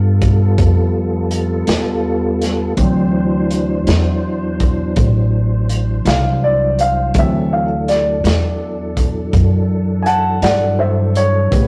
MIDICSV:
0, 0, Header, 1, 5, 480
1, 0, Start_track
1, 0, Tempo, 729040
1, 1827, Time_signature, 12, 3, 24, 8
1, 7686, End_track
2, 0, Start_track
2, 0, Title_t, "Grand piano"
2, 0, Program_c, 0, 0
2, 0, Note_on_c, 0, 77, 77
2, 365, Note_off_c, 0, 77, 0
2, 1821, Note_on_c, 0, 52, 41
2, 1825, Note_on_c, 0, 54, 38
2, 1827, Note_on_c, 0, 60, 48
2, 2519, Note_off_c, 0, 52, 0
2, 2521, Note_off_c, 0, 54, 0
2, 2522, Note_off_c, 0, 60, 0
2, 4004, Note_on_c, 0, 77, 71
2, 4229, Note_off_c, 0, 77, 0
2, 4240, Note_on_c, 0, 74, 70
2, 4467, Note_off_c, 0, 74, 0
2, 4481, Note_on_c, 0, 77, 74
2, 4708, Note_off_c, 0, 77, 0
2, 4714, Note_on_c, 0, 52, 42
2, 4721, Note_on_c, 0, 54, 39
2, 4723, Note_on_c, 0, 60, 48
2, 4732, Note_on_c, 0, 76, 75
2, 4953, Note_off_c, 0, 76, 0
2, 4957, Note_on_c, 0, 77, 64
2, 5031, Note_off_c, 0, 52, 0
2, 5034, Note_off_c, 0, 54, 0
2, 5035, Note_off_c, 0, 60, 0
2, 5186, Note_off_c, 0, 77, 0
2, 5194, Note_on_c, 0, 74, 72
2, 6123, Note_off_c, 0, 74, 0
2, 6600, Note_on_c, 0, 80, 58
2, 6625, Note_on_c, 0, 78, 74
2, 6627, Note_on_c, 0, 81, 80
2, 6629, Note_off_c, 0, 80, 0
2, 6848, Note_off_c, 0, 78, 0
2, 6859, Note_off_c, 0, 81, 0
2, 6866, Note_on_c, 0, 74, 64
2, 6870, Note_on_c, 0, 78, 67
2, 7089, Note_off_c, 0, 74, 0
2, 7100, Note_off_c, 0, 78, 0
2, 7103, Note_on_c, 0, 72, 60
2, 7110, Note_on_c, 0, 76, 70
2, 7327, Note_off_c, 0, 72, 0
2, 7340, Note_off_c, 0, 76, 0
2, 7353, Note_on_c, 0, 73, 76
2, 7575, Note_on_c, 0, 49, 40
2, 7578, Note_on_c, 0, 67, 37
2, 7581, Note_on_c, 0, 59, 47
2, 7686, Note_off_c, 0, 49, 0
2, 7686, Note_off_c, 0, 59, 0
2, 7686, Note_off_c, 0, 67, 0
2, 7686, Note_off_c, 0, 73, 0
2, 7686, End_track
3, 0, Start_track
3, 0, Title_t, "Tonewheel organ"
3, 0, Program_c, 1, 16
3, 0, Note_on_c, 1, 55, 62
3, 0, Note_on_c, 1, 59, 62
3, 0, Note_on_c, 1, 65, 58
3, 0, Note_on_c, 1, 69, 56
3, 1803, Note_off_c, 1, 69, 0
3, 1805, Note_off_c, 1, 55, 0
3, 1806, Note_off_c, 1, 59, 0
3, 1807, Note_off_c, 1, 65, 0
3, 1837, Note_on_c, 1, 72, 65
3, 1839, Note_on_c, 1, 52, 62
3, 1841, Note_on_c, 1, 62, 64
3, 1846, Note_on_c, 1, 54, 60
3, 4688, Note_off_c, 1, 52, 0
3, 4688, Note_off_c, 1, 72, 0
3, 4689, Note_off_c, 1, 62, 0
3, 4692, Note_off_c, 1, 54, 0
3, 4720, Note_on_c, 1, 69, 60
3, 4721, Note_on_c, 1, 52, 58
3, 4725, Note_on_c, 1, 54, 65
3, 4727, Note_on_c, 1, 62, 65
3, 7563, Note_off_c, 1, 52, 0
3, 7563, Note_off_c, 1, 69, 0
3, 7565, Note_off_c, 1, 54, 0
3, 7566, Note_off_c, 1, 62, 0
3, 7577, Note_on_c, 1, 57, 60
3, 7579, Note_on_c, 1, 67, 59
3, 7579, Note_on_c, 1, 71, 62
3, 7580, Note_on_c, 1, 61, 59
3, 7686, Note_off_c, 1, 57, 0
3, 7686, Note_off_c, 1, 61, 0
3, 7686, Note_off_c, 1, 67, 0
3, 7686, Note_off_c, 1, 71, 0
3, 7686, End_track
4, 0, Start_track
4, 0, Title_t, "Upright bass"
4, 0, Program_c, 2, 32
4, 0, Note_on_c, 2, 43, 88
4, 359, Note_off_c, 2, 43, 0
4, 384, Note_on_c, 2, 41, 69
4, 1084, Note_off_c, 2, 41, 0
4, 1105, Note_on_c, 2, 40, 74
4, 1805, Note_off_c, 2, 40, 0
4, 1823, Note_on_c, 2, 38, 75
4, 2524, Note_off_c, 2, 38, 0
4, 2549, Note_on_c, 2, 40, 87
4, 3248, Note_off_c, 2, 40, 0
4, 3269, Note_on_c, 2, 33, 81
4, 3967, Note_off_c, 2, 33, 0
4, 3985, Note_on_c, 2, 36, 82
4, 4685, Note_off_c, 2, 36, 0
4, 4704, Note_on_c, 2, 38, 82
4, 5404, Note_off_c, 2, 38, 0
4, 5425, Note_on_c, 2, 40, 81
4, 6124, Note_off_c, 2, 40, 0
4, 6144, Note_on_c, 2, 42, 80
4, 6842, Note_off_c, 2, 42, 0
4, 6861, Note_on_c, 2, 43, 83
4, 7559, Note_off_c, 2, 43, 0
4, 7585, Note_on_c, 2, 45, 76
4, 7686, Note_off_c, 2, 45, 0
4, 7686, End_track
5, 0, Start_track
5, 0, Title_t, "Drums"
5, 142, Note_on_c, 9, 42, 60
5, 143, Note_on_c, 9, 36, 73
5, 208, Note_off_c, 9, 42, 0
5, 209, Note_off_c, 9, 36, 0
5, 383, Note_on_c, 9, 36, 96
5, 383, Note_on_c, 9, 42, 75
5, 449, Note_off_c, 9, 36, 0
5, 449, Note_off_c, 9, 42, 0
5, 861, Note_on_c, 9, 42, 57
5, 927, Note_off_c, 9, 42, 0
5, 1100, Note_on_c, 9, 42, 79
5, 1113, Note_on_c, 9, 38, 104
5, 1166, Note_off_c, 9, 42, 0
5, 1179, Note_off_c, 9, 38, 0
5, 1590, Note_on_c, 9, 42, 57
5, 1603, Note_on_c, 9, 38, 28
5, 1656, Note_off_c, 9, 42, 0
5, 1669, Note_off_c, 9, 38, 0
5, 1824, Note_on_c, 9, 42, 78
5, 1827, Note_on_c, 9, 36, 99
5, 1890, Note_off_c, 9, 42, 0
5, 1893, Note_off_c, 9, 36, 0
5, 2308, Note_on_c, 9, 42, 57
5, 2374, Note_off_c, 9, 42, 0
5, 2548, Note_on_c, 9, 42, 72
5, 2560, Note_on_c, 9, 38, 98
5, 2613, Note_off_c, 9, 42, 0
5, 2626, Note_off_c, 9, 38, 0
5, 3028, Note_on_c, 9, 42, 55
5, 3030, Note_on_c, 9, 36, 78
5, 3094, Note_off_c, 9, 42, 0
5, 3096, Note_off_c, 9, 36, 0
5, 3266, Note_on_c, 9, 42, 67
5, 3270, Note_on_c, 9, 36, 93
5, 3332, Note_off_c, 9, 42, 0
5, 3336, Note_off_c, 9, 36, 0
5, 3749, Note_on_c, 9, 42, 56
5, 3815, Note_off_c, 9, 42, 0
5, 3987, Note_on_c, 9, 42, 76
5, 4000, Note_on_c, 9, 38, 103
5, 4053, Note_off_c, 9, 42, 0
5, 4065, Note_off_c, 9, 38, 0
5, 4469, Note_on_c, 9, 42, 64
5, 4534, Note_off_c, 9, 42, 0
5, 4703, Note_on_c, 9, 42, 86
5, 4707, Note_on_c, 9, 36, 101
5, 4769, Note_off_c, 9, 42, 0
5, 4773, Note_off_c, 9, 36, 0
5, 5190, Note_on_c, 9, 42, 63
5, 5203, Note_on_c, 9, 38, 29
5, 5256, Note_off_c, 9, 42, 0
5, 5269, Note_off_c, 9, 38, 0
5, 5431, Note_on_c, 9, 42, 73
5, 5444, Note_on_c, 9, 38, 99
5, 5497, Note_off_c, 9, 42, 0
5, 5509, Note_off_c, 9, 38, 0
5, 5905, Note_on_c, 9, 36, 69
5, 5905, Note_on_c, 9, 42, 61
5, 5971, Note_off_c, 9, 36, 0
5, 5971, Note_off_c, 9, 42, 0
5, 6145, Note_on_c, 9, 36, 100
5, 6146, Note_on_c, 9, 42, 73
5, 6211, Note_off_c, 9, 36, 0
5, 6211, Note_off_c, 9, 42, 0
5, 6623, Note_on_c, 9, 42, 49
5, 6689, Note_off_c, 9, 42, 0
5, 6863, Note_on_c, 9, 42, 75
5, 6875, Note_on_c, 9, 38, 93
5, 6929, Note_off_c, 9, 42, 0
5, 6941, Note_off_c, 9, 38, 0
5, 7344, Note_on_c, 9, 42, 57
5, 7410, Note_off_c, 9, 42, 0
5, 7584, Note_on_c, 9, 36, 103
5, 7588, Note_on_c, 9, 42, 75
5, 7650, Note_off_c, 9, 36, 0
5, 7654, Note_off_c, 9, 42, 0
5, 7686, End_track
0, 0, End_of_file